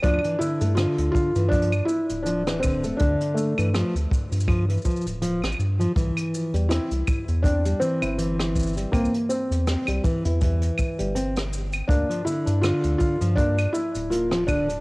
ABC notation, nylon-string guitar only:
X:1
M:4/4
L:1/16
Q:"Swing 16ths" 1/4=81
K:Cmix
V:1 name="Nylon-string guitar" clef=bass
F, E, D, A, D,3 E, F, z3 F, E, D, A, | D,3 E, F, z3 F, E, F, z F, z2 F, | E,3 G, C z3 C G, E, E E,3 G, | C z3 C G, E, E E,3 G, C z3 |
B, F, D, D D,3 F, B, z3 B, F, D, D |]